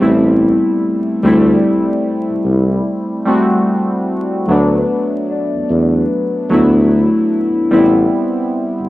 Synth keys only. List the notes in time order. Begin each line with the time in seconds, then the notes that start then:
Already playing: E4
0.00 G3 A3 C4 E4
1.23 G3 A3 C4 E4
3.25 G3 A3 C4 F#4
4.48 F#3 A3 B3 D4
6.50 F#3 A3 B3 E4
7.71 G3 B3 C4 E4